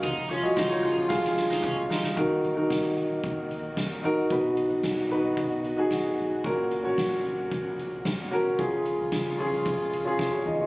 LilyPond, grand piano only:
<<
  \new Staff \with { instrumentName = "Grand piano" } { \time 4/4 \key dis \minor \tempo 4 = 112 << { r8 <eis' cis''>16 <fis' dis''>8 <eis' cis''>8. <gis' eis''>4. r8 | r1 | r1 | r1 |
r2. r16 <eis' cis''>16 dis''16 <eis' cis''>16 | } \\ { r1 | <dis' fis' ais'>8. <dis' fis' ais'>4.~ <dis' fis' ais'>16 r4 <dis' fis' ais'>8 | <dis' fis' b'>4~ <dis' fis' b'>16 r16 <dis' fis' b'>4 r16 <dis' fis' gis'>4 r16 | <cis' fis' ais'>8. <cis' fis' cis''>4.~ <cis' fis' cis''>16 r4 <cis' fis' ais'>8 |
<cis' eis' gis'>4~ <cis' eis' gis'>16 r16 <cis' eis' gis'>4 r16 <cis' eis' gis'>4 r16 | } >> }
  \new Staff \with { instrumentName = "Grand piano" } { \clef bass \time 4/4 \key dis \minor r4. <eis gis cis'>2~ <eis gis cis'>8 | dis4. r2 r8 | b,4. r2 r8 | ais,4. r2 r8 |
cis4. r2 r8 | }
>>